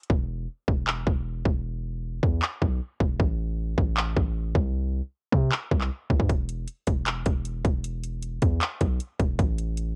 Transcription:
0.03 closed hi-hat
0.10 E1, kick
0.68 E1, kick
0.87 clap
1.07 E1, kick
1.45 E1, kick
2.23 E2, kick
2.42 clap
2.62 B1, kick
3.00 E1, kick
3.20 A1, kick
3.78 A1, kick
3.97 clap
4.16 A1, kick
4.55 C2, kick
5.32 C3, kick
5.52 clap
5.71 C2, kick
5.81 clap
6.10 C2, kick
6.20 G2, kick
6.29 E1, kick, closed hi-hat
6.49 closed hi-hat
6.68 closed hi-hat
6.87 E1, kick, closed hi-hat
7.06 clap, closed hi-hat
7.26 E1, kick, closed hi-hat
7.45 closed hi-hat
7.65 E1, kick, closed hi-hat
7.84 closed hi-hat
8.04 closed hi-hat
8.22 closed hi-hat
8.42 E2, kick, closed hi-hat
8.61 clap, closed hi-hat
8.81 B1, kick, closed hi-hat
9.00 closed hi-hat
9.20 E1, kick, closed hi-hat
9.39 A1, kick, closed hi-hat
9.58 closed hi-hat
9.77 closed hi-hat

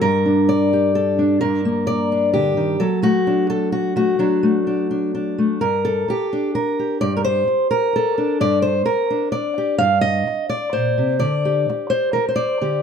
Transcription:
0.01 G2 A#4
0.26 D4
0.49 D5
0.73 G4
0.95 A4
1.19 D4
1.41 G2 A#4
1.65 A#3
1.87 D5
2.12 D4
2.34 D3 G4
2.57 D#3
2.80 F#3 A4
3.02 A3 F#4
3.27 D4
3.50 A4
3.72 F#4
3.96 A3 F#4
4.19 F#3 D4
4.43 A3
4.67 D4
4.91 D4
5.15 D4
5.38 A3
5.61 G2 A#4
5.85 A4
6.08 G4, muted steel-string acoustic guitar stroke
6.33 D4
6.55 A#4, muted steel-string acoustic guitar stroke
6.79 G4
7.01 G2 D5
7.17 A#4
7.24 C5
7.48 muted steel-string acoustic guitar stroke
7.71 A#4
7.93 A4, muted steel-string acoustic guitar stroke
8.18 D4
8.40 G2 D5
8.62 C5
8.86 A#4, muted steel-string acoustic guitar stroke
9.10 D4
9.32 D5, muted steel-string acoustic guitar stroke
9.58 G4
9.78 G2 F5
10.01 D#5
10.27 muted steel-string acoustic guitar stroke
10.49 D5
10.73 A#2 C5
10.98 C3
11.19 D3 D5
11.45 G4
11.69 muted steel-string acoustic guitar stroke
11.90 C5
12.13 A#4, muted steel-string acoustic guitar stroke
12.28 C5
12.36 D5
12.61 D3 G4

